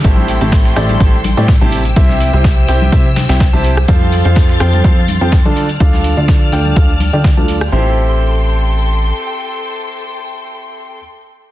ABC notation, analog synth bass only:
X:1
M:4/4
L:1/16
Q:"Swing 16ths" 1/4=125
K:Am
V:1 name="Analog synth bass" clef=bass
A,,,3 A,,,3 A,,,2 A,,,3 A,,2 A,,,3 | C,,3 C,,3 C,,2 C,,3 C,,2 C,,3 | F,,3 F,,3 F,,2 F,,3 F,,2 D,,3 | D,,3 D,,3 D,,2 D,,3 D,,2 D,,3 |
A,,,12 z4 | z16 |]